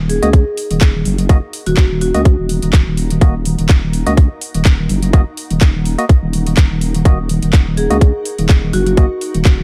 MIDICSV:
0, 0, Header, 1, 6, 480
1, 0, Start_track
1, 0, Key_signature, -6, "minor"
1, 0, Tempo, 480000
1, 1294, Time_signature, 4, 2, 24, 8
1, 9634, End_track
2, 0, Start_track
2, 0, Title_t, "Ambient pad"
2, 0, Program_c, 0, 92
2, 0, Note_on_c, 0, 63, 77
2, 0, Note_on_c, 0, 70, 79
2, 0, Note_on_c, 0, 78, 77
2, 228, Note_on_c, 0, 82, 72
2, 7908, Note_on_c, 0, 85, 72
2, 7930, Note_off_c, 0, 82, 0
2, 9634, Note_off_c, 0, 63, 0
2, 9634, Note_off_c, 0, 70, 0
2, 9634, Note_off_c, 0, 78, 0
2, 9634, Note_off_c, 0, 85, 0
2, 9634, End_track
3, 0, Start_track
3, 0, Title_t, "Marimba"
3, 0, Program_c, 1, 12
3, 93, Note_on_c, 1, 68, 86
3, 177, Note_off_c, 1, 68, 0
3, 224, Note_on_c, 1, 68, 74
3, 294, Note_off_c, 1, 68, 0
3, 1666, Note_on_c, 1, 66, 93
3, 1776, Note_off_c, 1, 66, 0
3, 2015, Note_on_c, 1, 66, 89
3, 2098, Note_off_c, 1, 66, 0
3, 2146, Note_on_c, 1, 66, 73
3, 2215, Note_off_c, 1, 66, 0
3, 7774, Note_on_c, 1, 68, 86
3, 7858, Note_off_c, 1, 68, 0
3, 7906, Note_on_c, 1, 68, 75
3, 7975, Note_off_c, 1, 68, 0
3, 8735, Note_on_c, 1, 66, 90
3, 8818, Note_off_c, 1, 66, 0
3, 8865, Note_on_c, 1, 66, 79
3, 8935, Note_off_c, 1, 66, 0
3, 9634, End_track
4, 0, Start_track
4, 0, Title_t, "Synth stab"
4, 0, Program_c, 2, 62
4, 225, Note_on_c, 2, 66, 74
4, 225, Note_on_c, 2, 75, 90
4, 226, Note_on_c, 2, 58, 81
4, 293, Note_off_c, 2, 58, 0
4, 293, Note_off_c, 2, 66, 0
4, 293, Note_off_c, 2, 75, 0
4, 1294, Note_on_c, 2, 58, 93
4, 1294, Note_on_c, 2, 66, 85
4, 1294, Note_on_c, 2, 75, 101
4, 1376, Note_off_c, 2, 58, 0
4, 1376, Note_off_c, 2, 66, 0
4, 1376, Note_off_c, 2, 75, 0
4, 2145, Note_on_c, 2, 58, 78
4, 2145, Note_on_c, 2, 66, 73
4, 2145, Note_on_c, 2, 75, 87
4, 2213, Note_off_c, 2, 58, 0
4, 2213, Note_off_c, 2, 66, 0
4, 2213, Note_off_c, 2, 75, 0
4, 3214, Note_on_c, 2, 66, 71
4, 3214, Note_on_c, 2, 75, 83
4, 3215, Note_on_c, 2, 58, 76
4, 3345, Note_off_c, 2, 58, 0
4, 3345, Note_off_c, 2, 66, 0
4, 3345, Note_off_c, 2, 75, 0
4, 4065, Note_on_c, 2, 66, 75
4, 4066, Note_on_c, 2, 58, 80
4, 4066, Note_on_c, 2, 75, 90
4, 4133, Note_off_c, 2, 58, 0
4, 4133, Note_off_c, 2, 66, 0
4, 4133, Note_off_c, 2, 75, 0
4, 5134, Note_on_c, 2, 58, 93
4, 5134, Note_on_c, 2, 66, 85
4, 5134, Note_on_c, 2, 75, 105
4, 5216, Note_off_c, 2, 58, 0
4, 5216, Note_off_c, 2, 66, 0
4, 5216, Note_off_c, 2, 75, 0
4, 5985, Note_on_c, 2, 58, 75
4, 5985, Note_on_c, 2, 66, 72
4, 5985, Note_on_c, 2, 75, 85
4, 6053, Note_off_c, 2, 58, 0
4, 6053, Note_off_c, 2, 66, 0
4, 6053, Note_off_c, 2, 75, 0
4, 7054, Note_on_c, 2, 58, 76
4, 7054, Note_on_c, 2, 66, 70
4, 7054, Note_on_c, 2, 75, 83
4, 7185, Note_off_c, 2, 58, 0
4, 7185, Note_off_c, 2, 66, 0
4, 7185, Note_off_c, 2, 75, 0
4, 7904, Note_on_c, 2, 58, 77
4, 7904, Note_on_c, 2, 66, 74
4, 7904, Note_on_c, 2, 75, 87
4, 7973, Note_off_c, 2, 58, 0
4, 7973, Note_off_c, 2, 66, 0
4, 7973, Note_off_c, 2, 75, 0
4, 8973, Note_on_c, 2, 75, 105
4, 8974, Note_on_c, 2, 58, 97
4, 8974, Note_on_c, 2, 66, 90
4, 9056, Note_off_c, 2, 58, 0
4, 9056, Note_off_c, 2, 66, 0
4, 9056, Note_off_c, 2, 75, 0
4, 9634, End_track
5, 0, Start_track
5, 0, Title_t, "Wobble bass"
5, 0, Program_c, 3, 39
5, 0, Note_on_c, 3, 27, 96
5, 203, Note_off_c, 3, 27, 0
5, 225, Note_on_c, 3, 37, 97
5, 444, Note_off_c, 3, 37, 0
5, 705, Note_on_c, 3, 27, 97
5, 1036, Note_off_c, 3, 27, 0
5, 1053, Note_on_c, 3, 30, 95
5, 1404, Note_off_c, 3, 30, 0
5, 1665, Note_on_c, 3, 27, 96
5, 2124, Note_off_c, 3, 27, 0
5, 2145, Note_on_c, 3, 37, 95
5, 2364, Note_off_c, 3, 37, 0
5, 2385, Note_on_c, 3, 27, 92
5, 2604, Note_off_c, 3, 27, 0
5, 2625, Note_on_c, 3, 27, 96
5, 2844, Note_off_c, 3, 27, 0
5, 2865, Note_on_c, 3, 27, 94
5, 3197, Note_off_c, 3, 27, 0
5, 3214, Note_on_c, 3, 27, 93
5, 3564, Note_off_c, 3, 27, 0
5, 3586, Note_on_c, 3, 27, 99
5, 4044, Note_off_c, 3, 27, 0
5, 4064, Note_on_c, 3, 37, 99
5, 4284, Note_off_c, 3, 37, 0
5, 4544, Note_on_c, 3, 27, 100
5, 4876, Note_off_c, 3, 27, 0
5, 4894, Note_on_c, 3, 30, 95
5, 5244, Note_off_c, 3, 30, 0
5, 5505, Note_on_c, 3, 27, 96
5, 5964, Note_off_c, 3, 27, 0
5, 6224, Note_on_c, 3, 27, 94
5, 6556, Note_off_c, 3, 27, 0
5, 6574, Note_on_c, 3, 27, 100
5, 6684, Note_off_c, 3, 27, 0
5, 6704, Note_on_c, 3, 27, 97
5, 7036, Note_off_c, 3, 27, 0
5, 7053, Note_on_c, 3, 27, 94
5, 7404, Note_off_c, 3, 27, 0
5, 7425, Note_on_c, 3, 27, 100
5, 7884, Note_off_c, 3, 27, 0
5, 7904, Note_on_c, 3, 37, 97
5, 8124, Note_off_c, 3, 37, 0
5, 8385, Note_on_c, 3, 27, 96
5, 8716, Note_off_c, 3, 27, 0
5, 8734, Note_on_c, 3, 30, 96
5, 9084, Note_off_c, 3, 30, 0
5, 9345, Note_on_c, 3, 27, 98
5, 9634, Note_off_c, 3, 27, 0
5, 9634, End_track
6, 0, Start_track
6, 0, Title_t, "Drums"
6, 95, Note_on_c, 9, 46, 93
6, 195, Note_off_c, 9, 46, 0
6, 226, Note_on_c, 9, 42, 53
6, 326, Note_off_c, 9, 42, 0
6, 333, Note_on_c, 9, 36, 112
6, 335, Note_on_c, 9, 42, 68
6, 433, Note_off_c, 9, 36, 0
6, 435, Note_off_c, 9, 42, 0
6, 575, Note_on_c, 9, 46, 106
6, 675, Note_off_c, 9, 46, 0
6, 706, Note_on_c, 9, 42, 54
6, 806, Note_off_c, 9, 42, 0
6, 811, Note_on_c, 9, 39, 120
6, 814, Note_on_c, 9, 36, 104
6, 814, Note_on_c, 9, 42, 67
6, 911, Note_off_c, 9, 39, 0
6, 914, Note_off_c, 9, 36, 0
6, 914, Note_off_c, 9, 42, 0
6, 1054, Note_on_c, 9, 46, 92
6, 1154, Note_off_c, 9, 46, 0
6, 1184, Note_on_c, 9, 42, 54
6, 1284, Note_off_c, 9, 42, 0
6, 1294, Note_on_c, 9, 36, 120
6, 1294, Note_on_c, 9, 42, 65
6, 1394, Note_off_c, 9, 36, 0
6, 1394, Note_off_c, 9, 42, 0
6, 1533, Note_on_c, 9, 46, 111
6, 1633, Note_off_c, 9, 46, 0
6, 1664, Note_on_c, 9, 42, 53
6, 1764, Note_off_c, 9, 42, 0
6, 1770, Note_on_c, 9, 39, 117
6, 1773, Note_on_c, 9, 42, 64
6, 1774, Note_on_c, 9, 36, 113
6, 1870, Note_off_c, 9, 39, 0
6, 1873, Note_off_c, 9, 42, 0
6, 1874, Note_off_c, 9, 36, 0
6, 2013, Note_on_c, 9, 46, 95
6, 2113, Note_off_c, 9, 46, 0
6, 2144, Note_on_c, 9, 42, 52
6, 2244, Note_off_c, 9, 42, 0
6, 2253, Note_on_c, 9, 42, 65
6, 2254, Note_on_c, 9, 36, 120
6, 2353, Note_off_c, 9, 42, 0
6, 2354, Note_off_c, 9, 36, 0
6, 2493, Note_on_c, 9, 46, 110
6, 2593, Note_off_c, 9, 46, 0
6, 2624, Note_on_c, 9, 42, 51
6, 2724, Note_off_c, 9, 42, 0
6, 2731, Note_on_c, 9, 39, 122
6, 2734, Note_on_c, 9, 36, 109
6, 2734, Note_on_c, 9, 42, 68
6, 2831, Note_off_c, 9, 39, 0
6, 2834, Note_off_c, 9, 36, 0
6, 2834, Note_off_c, 9, 42, 0
6, 2974, Note_on_c, 9, 46, 95
6, 3074, Note_off_c, 9, 46, 0
6, 3105, Note_on_c, 9, 42, 53
6, 3205, Note_off_c, 9, 42, 0
6, 3214, Note_on_c, 9, 36, 119
6, 3214, Note_on_c, 9, 42, 61
6, 3314, Note_off_c, 9, 36, 0
6, 3314, Note_off_c, 9, 42, 0
6, 3454, Note_on_c, 9, 46, 115
6, 3554, Note_off_c, 9, 46, 0
6, 3586, Note_on_c, 9, 42, 50
6, 3686, Note_off_c, 9, 42, 0
6, 3691, Note_on_c, 9, 39, 115
6, 3694, Note_on_c, 9, 36, 117
6, 3694, Note_on_c, 9, 42, 62
6, 3791, Note_off_c, 9, 39, 0
6, 3794, Note_off_c, 9, 36, 0
6, 3794, Note_off_c, 9, 42, 0
6, 3934, Note_on_c, 9, 46, 97
6, 4034, Note_off_c, 9, 46, 0
6, 4065, Note_on_c, 9, 42, 49
6, 4165, Note_off_c, 9, 42, 0
6, 4174, Note_on_c, 9, 36, 118
6, 4174, Note_on_c, 9, 42, 63
6, 4274, Note_off_c, 9, 36, 0
6, 4274, Note_off_c, 9, 42, 0
6, 4414, Note_on_c, 9, 46, 109
6, 4514, Note_off_c, 9, 46, 0
6, 4545, Note_on_c, 9, 42, 51
6, 4645, Note_off_c, 9, 42, 0
6, 4651, Note_on_c, 9, 39, 121
6, 4654, Note_on_c, 9, 36, 108
6, 4654, Note_on_c, 9, 42, 63
6, 4751, Note_off_c, 9, 39, 0
6, 4754, Note_off_c, 9, 36, 0
6, 4754, Note_off_c, 9, 42, 0
6, 4894, Note_on_c, 9, 46, 100
6, 4994, Note_off_c, 9, 46, 0
6, 5025, Note_on_c, 9, 42, 51
6, 5125, Note_off_c, 9, 42, 0
6, 5134, Note_on_c, 9, 36, 117
6, 5134, Note_on_c, 9, 42, 62
6, 5234, Note_off_c, 9, 36, 0
6, 5234, Note_off_c, 9, 42, 0
6, 5374, Note_on_c, 9, 46, 109
6, 5474, Note_off_c, 9, 46, 0
6, 5505, Note_on_c, 9, 42, 50
6, 5605, Note_off_c, 9, 42, 0
6, 5612, Note_on_c, 9, 39, 113
6, 5614, Note_on_c, 9, 36, 110
6, 5614, Note_on_c, 9, 42, 61
6, 5712, Note_off_c, 9, 39, 0
6, 5714, Note_off_c, 9, 36, 0
6, 5714, Note_off_c, 9, 42, 0
6, 5854, Note_on_c, 9, 46, 92
6, 5954, Note_off_c, 9, 46, 0
6, 5986, Note_on_c, 9, 42, 49
6, 6086, Note_off_c, 9, 42, 0
6, 6094, Note_on_c, 9, 36, 115
6, 6094, Note_on_c, 9, 42, 59
6, 6194, Note_off_c, 9, 36, 0
6, 6194, Note_off_c, 9, 42, 0
6, 6334, Note_on_c, 9, 46, 107
6, 6434, Note_off_c, 9, 46, 0
6, 6465, Note_on_c, 9, 42, 49
6, 6565, Note_off_c, 9, 42, 0
6, 6571, Note_on_c, 9, 39, 115
6, 6574, Note_on_c, 9, 36, 110
6, 6574, Note_on_c, 9, 42, 61
6, 6671, Note_off_c, 9, 39, 0
6, 6674, Note_off_c, 9, 36, 0
6, 6674, Note_off_c, 9, 42, 0
6, 6814, Note_on_c, 9, 46, 96
6, 6914, Note_off_c, 9, 46, 0
6, 6945, Note_on_c, 9, 42, 51
6, 7045, Note_off_c, 9, 42, 0
6, 7053, Note_on_c, 9, 36, 117
6, 7054, Note_on_c, 9, 42, 62
6, 7153, Note_off_c, 9, 36, 0
6, 7154, Note_off_c, 9, 42, 0
6, 7294, Note_on_c, 9, 46, 105
6, 7394, Note_off_c, 9, 46, 0
6, 7425, Note_on_c, 9, 42, 51
6, 7525, Note_off_c, 9, 42, 0
6, 7531, Note_on_c, 9, 39, 107
6, 7533, Note_on_c, 9, 36, 104
6, 7534, Note_on_c, 9, 42, 58
6, 7631, Note_off_c, 9, 39, 0
6, 7633, Note_off_c, 9, 36, 0
6, 7634, Note_off_c, 9, 42, 0
6, 7773, Note_on_c, 9, 46, 92
6, 7873, Note_off_c, 9, 46, 0
6, 7905, Note_on_c, 9, 42, 49
6, 8005, Note_off_c, 9, 42, 0
6, 8013, Note_on_c, 9, 36, 115
6, 8014, Note_on_c, 9, 42, 61
6, 8113, Note_off_c, 9, 36, 0
6, 8114, Note_off_c, 9, 42, 0
6, 8254, Note_on_c, 9, 46, 108
6, 8354, Note_off_c, 9, 46, 0
6, 8385, Note_on_c, 9, 42, 51
6, 8485, Note_off_c, 9, 42, 0
6, 8491, Note_on_c, 9, 39, 109
6, 8494, Note_on_c, 9, 36, 110
6, 8494, Note_on_c, 9, 42, 61
6, 8591, Note_off_c, 9, 39, 0
6, 8593, Note_off_c, 9, 36, 0
6, 8594, Note_off_c, 9, 42, 0
6, 8733, Note_on_c, 9, 46, 94
6, 8833, Note_off_c, 9, 46, 0
6, 8865, Note_on_c, 9, 42, 52
6, 8965, Note_off_c, 9, 42, 0
6, 8974, Note_on_c, 9, 36, 109
6, 8974, Note_on_c, 9, 42, 66
6, 9074, Note_off_c, 9, 36, 0
6, 9074, Note_off_c, 9, 42, 0
6, 9213, Note_on_c, 9, 46, 103
6, 9313, Note_off_c, 9, 46, 0
6, 9345, Note_on_c, 9, 42, 51
6, 9445, Note_off_c, 9, 42, 0
6, 9451, Note_on_c, 9, 39, 108
6, 9454, Note_on_c, 9, 36, 108
6, 9454, Note_on_c, 9, 42, 63
6, 9551, Note_off_c, 9, 39, 0
6, 9554, Note_off_c, 9, 36, 0
6, 9554, Note_off_c, 9, 42, 0
6, 9634, End_track
0, 0, End_of_file